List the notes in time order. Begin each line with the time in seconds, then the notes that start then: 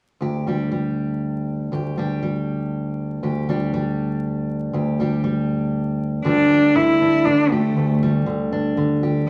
0.21 D2 G4
0.47 G3 D4 G4
0.72 G3
1.72 D2 G4
1.98 G3 D4 G4
2.23 G3
3.23 D2 G4
3.49 G3 D4 G4
3.74 G3
4.73 D2 G4
5.00 G3 D4 G4
5.24 G3
6.24 D2 D3 G3 D4 G4
6.50 G3
6.76 D3 E4
7.02 D4
7.25 D3 D4
7.52 A3 G4
7.76 D2
8.03 G3
8.26 D3
8.53 D4
8.77 D3
9.03 G4